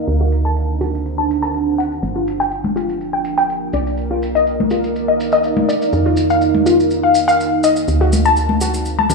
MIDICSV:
0, 0, Header, 1, 5, 480
1, 0, Start_track
1, 0, Tempo, 487805
1, 76, Time_signature, 4, 2, 24, 8
1, 9001, End_track
2, 0, Start_track
2, 0, Title_t, "Synth pluck"
2, 0, Program_c, 0, 84
2, 202, Note_on_c, 0, 66, 72
2, 242, Note_off_c, 0, 66, 0
2, 443, Note_on_c, 0, 81, 96
2, 482, Note_off_c, 0, 81, 0
2, 796, Note_on_c, 0, 66, 75
2, 870, Note_off_c, 0, 66, 0
2, 1162, Note_on_c, 0, 81, 74
2, 1202, Note_off_c, 0, 81, 0
2, 1402, Note_on_c, 0, 81, 96
2, 1442, Note_off_c, 0, 81, 0
2, 1755, Note_on_c, 0, 78, 77
2, 1830, Note_off_c, 0, 78, 0
2, 2122, Note_on_c, 0, 65, 73
2, 2162, Note_off_c, 0, 65, 0
2, 2362, Note_on_c, 0, 79, 100
2, 2402, Note_off_c, 0, 79, 0
2, 2715, Note_on_c, 0, 65, 77
2, 2790, Note_off_c, 0, 65, 0
2, 3082, Note_on_c, 0, 79, 74
2, 3122, Note_off_c, 0, 79, 0
2, 3322, Note_on_c, 0, 79, 100
2, 3362, Note_off_c, 0, 79, 0
2, 3675, Note_on_c, 0, 74, 75
2, 3750, Note_off_c, 0, 74, 0
2, 4042, Note_on_c, 0, 65, 72
2, 4082, Note_off_c, 0, 65, 0
2, 4282, Note_on_c, 0, 75, 98
2, 4322, Note_off_c, 0, 75, 0
2, 4635, Note_on_c, 0, 65, 76
2, 4710, Note_off_c, 0, 65, 0
2, 5002, Note_on_c, 0, 75, 73
2, 5042, Note_off_c, 0, 75, 0
2, 5242, Note_on_c, 0, 75, 100
2, 5282, Note_off_c, 0, 75, 0
2, 5595, Note_on_c, 0, 74, 75
2, 5670, Note_off_c, 0, 74, 0
2, 5962, Note_on_c, 0, 65, 74
2, 6002, Note_off_c, 0, 65, 0
2, 6202, Note_on_c, 0, 77, 96
2, 6242, Note_off_c, 0, 77, 0
2, 6555, Note_on_c, 0, 65, 75
2, 6630, Note_off_c, 0, 65, 0
2, 6922, Note_on_c, 0, 77, 73
2, 6962, Note_off_c, 0, 77, 0
2, 7162, Note_on_c, 0, 77, 99
2, 7202, Note_off_c, 0, 77, 0
2, 7515, Note_on_c, 0, 75, 76
2, 7590, Note_off_c, 0, 75, 0
2, 7882, Note_on_c, 0, 66, 73
2, 7922, Note_off_c, 0, 66, 0
2, 8123, Note_on_c, 0, 81, 98
2, 8162, Note_off_c, 0, 81, 0
2, 8476, Note_on_c, 0, 66, 77
2, 8550, Note_off_c, 0, 66, 0
2, 8842, Note_on_c, 0, 81, 74
2, 8882, Note_off_c, 0, 81, 0
2, 9001, End_track
3, 0, Start_track
3, 0, Title_t, "Ambient pad"
3, 0, Program_c, 1, 92
3, 75, Note_on_c, 1, 62, 84
3, 222, Note_on_c, 1, 72, 85
3, 1995, Note_on_c, 1, 65, 82
3, 2156, Note_on_c, 1, 79, 79
3, 2230, Note_on_c, 1, 70, 82
3, 2669, Note_off_c, 1, 72, 0
3, 2670, Note_off_c, 1, 62, 0
3, 3675, Note_on_c, 1, 63, 84
3, 3954, Note_on_c, 1, 74, 83
3, 4403, Note_on_c, 1, 77, 91
3, 4544, Note_off_c, 1, 79, 0
3, 4545, Note_off_c, 1, 65, 0
3, 6488, Note_on_c, 1, 79, 75
3, 6605, Note_off_c, 1, 77, 0
3, 6606, Note_off_c, 1, 74, 0
3, 7755, Note_off_c, 1, 63, 0
3, 7755, Note_off_c, 1, 70, 0
3, 7755, Note_off_c, 1, 79, 0
3, 7756, Note_on_c, 1, 62, 79
3, 7926, Note_on_c, 1, 72, 86
3, 9001, Note_off_c, 1, 62, 0
3, 9001, Note_off_c, 1, 72, 0
3, 9001, End_track
4, 0, Start_track
4, 0, Title_t, "FM bass"
4, 0, Program_c, 2, 39
4, 75, Note_on_c, 2, 38, 84
4, 1973, Note_off_c, 2, 38, 0
4, 1994, Note_on_c, 2, 31, 87
4, 3652, Note_off_c, 2, 31, 0
4, 3675, Note_on_c, 2, 36, 85
4, 5572, Note_off_c, 2, 36, 0
4, 5834, Note_on_c, 2, 41, 88
4, 7732, Note_off_c, 2, 41, 0
4, 7754, Note_on_c, 2, 38, 88
4, 9001, Note_off_c, 2, 38, 0
4, 9001, End_track
5, 0, Start_track
5, 0, Title_t, "Drums"
5, 74, Note_on_c, 9, 70, 36
5, 172, Note_off_c, 9, 70, 0
5, 314, Note_on_c, 9, 70, 90
5, 413, Note_off_c, 9, 70, 0
5, 449, Note_on_c, 9, 70, 47
5, 547, Note_off_c, 9, 70, 0
5, 554, Note_on_c, 9, 70, 39
5, 652, Note_off_c, 9, 70, 0
5, 795, Note_on_c, 9, 70, 85
5, 893, Note_off_c, 9, 70, 0
5, 931, Note_on_c, 9, 70, 52
5, 1030, Note_off_c, 9, 70, 0
5, 1038, Note_on_c, 9, 70, 37
5, 1137, Note_off_c, 9, 70, 0
5, 1284, Note_on_c, 9, 70, 82
5, 1383, Note_off_c, 9, 70, 0
5, 1397, Note_on_c, 9, 70, 56
5, 1495, Note_off_c, 9, 70, 0
5, 1515, Note_on_c, 9, 70, 39
5, 1613, Note_off_c, 9, 70, 0
5, 1768, Note_on_c, 9, 70, 93
5, 1867, Note_off_c, 9, 70, 0
5, 1886, Note_on_c, 9, 70, 46
5, 1984, Note_off_c, 9, 70, 0
5, 1994, Note_on_c, 9, 70, 37
5, 2093, Note_off_c, 9, 70, 0
5, 2238, Note_on_c, 9, 70, 91
5, 2337, Note_off_c, 9, 70, 0
5, 2370, Note_on_c, 9, 70, 51
5, 2469, Note_off_c, 9, 70, 0
5, 2471, Note_on_c, 9, 70, 38
5, 2570, Note_off_c, 9, 70, 0
5, 2600, Note_on_c, 9, 63, 57
5, 2698, Note_off_c, 9, 63, 0
5, 2723, Note_on_c, 9, 70, 85
5, 2821, Note_off_c, 9, 70, 0
5, 2846, Note_on_c, 9, 70, 49
5, 2945, Note_off_c, 9, 70, 0
5, 2959, Note_on_c, 9, 70, 36
5, 3057, Note_off_c, 9, 70, 0
5, 3192, Note_on_c, 9, 70, 83
5, 3290, Note_off_c, 9, 70, 0
5, 3321, Note_on_c, 9, 70, 47
5, 3419, Note_off_c, 9, 70, 0
5, 3439, Note_on_c, 9, 70, 40
5, 3537, Note_off_c, 9, 70, 0
5, 3672, Note_on_c, 9, 70, 86
5, 3771, Note_off_c, 9, 70, 0
5, 3805, Note_on_c, 9, 70, 53
5, 3903, Note_off_c, 9, 70, 0
5, 3908, Note_on_c, 9, 70, 35
5, 4006, Note_off_c, 9, 70, 0
5, 4158, Note_on_c, 9, 70, 77
5, 4256, Note_off_c, 9, 70, 0
5, 4289, Note_on_c, 9, 70, 46
5, 4387, Note_off_c, 9, 70, 0
5, 4394, Note_on_c, 9, 70, 34
5, 4493, Note_off_c, 9, 70, 0
5, 4528, Note_on_c, 9, 63, 58
5, 4626, Note_off_c, 9, 63, 0
5, 4630, Note_on_c, 9, 70, 78
5, 4728, Note_off_c, 9, 70, 0
5, 4759, Note_on_c, 9, 70, 49
5, 4858, Note_off_c, 9, 70, 0
5, 4878, Note_on_c, 9, 70, 38
5, 4977, Note_off_c, 9, 70, 0
5, 5120, Note_on_c, 9, 70, 79
5, 5218, Note_off_c, 9, 70, 0
5, 5233, Note_on_c, 9, 70, 51
5, 5331, Note_off_c, 9, 70, 0
5, 5349, Note_on_c, 9, 70, 34
5, 5448, Note_off_c, 9, 70, 0
5, 5477, Note_on_c, 9, 63, 63
5, 5575, Note_off_c, 9, 63, 0
5, 5603, Note_on_c, 9, 70, 89
5, 5701, Note_off_c, 9, 70, 0
5, 5726, Note_on_c, 9, 70, 48
5, 5824, Note_off_c, 9, 70, 0
5, 5831, Note_on_c, 9, 70, 35
5, 5929, Note_off_c, 9, 70, 0
5, 6069, Note_on_c, 9, 70, 86
5, 6168, Note_off_c, 9, 70, 0
5, 6198, Note_on_c, 9, 70, 47
5, 6296, Note_off_c, 9, 70, 0
5, 6311, Note_on_c, 9, 70, 36
5, 6409, Note_off_c, 9, 70, 0
5, 6440, Note_on_c, 9, 63, 58
5, 6538, Note_off_c, 9, 63, 0
5, 6557, Note_on_c, 9, 70, 87
5, 6656, Note_off_c, 9, 70, 0
5, 6691, Note_on_c, 9, 70, 46
5, 6789, Note_off_c, 9, 70, 0
5, 6795, Note_on_c, 9, 70, 33
5, 6893, Note_off_c, 9, 70, 0
5, 7033, Note_on_c, 9, 70, 86
5, 7132, Note_off_c, 9, 70, 0
5, 7170, Note_on_c, 9, 70, 53
5, 7268, Note_off_c, 9, 70, 0
5, 7285, Note_on_c, 9, 70, 36
5, 7384, Note_off_c, 9, 70, 0
5, 7514, Note_on_c, 9, 70, 85
5, 7613, Note_off_c, 9, 70, 0
5, 7638, Note_on_c, 9, 70, 51
5, 7736, Note_off_c, 9, 70, 0
5, 7754, Note_on_c, 9, 70, 38
5, 7852, Note_off_c, 9, 70, 0
5, 7995, Note_on_c, 9, 70, 76
5, 7997, Note_on_c, 9, 63, 53
5, 8094, Note_off_c, 9, 70, 0
5, 8095, Note_off_c, 9, 63, 0
5, 8120, Note_on_c, 9, 70, 43
5, 8218, Note_off_c, 9, 70, 0
5, 8231, Note_on_c, 9, 70, 33
5, 8329, Note_off_c, 9, 70, 0
5, 8355, Note_on_c, 9, 63, 58
5, 8453, Note_off_c, 9, 63, 0
5, 8470, Note_on_c, 9, 70, 80
5, 8569, Note_off_c, 9, 70, 0
5, 8599, Note_on_c, 9, 70, 45
5, 8698, Note_off_c, 9, 70, 0
5, 8712, Note_on_c, 9, 70, 33
5, 8811, Note_off_c, 9, 70, 0
5, 8842, Note_on_c, 9, 63, 54
5, 8940, Note_off_c, 9, 63, 0
5, 8950, Note_on_c, 9, 64, 81
5, 8957, Note_on_c, 9, 70, 91
5, 9001, Note_off_c, 9, 64, 0
5, 9001, Note_off_c, 9, 70, 0
5, 9001, End_track
0, 0, End_of_file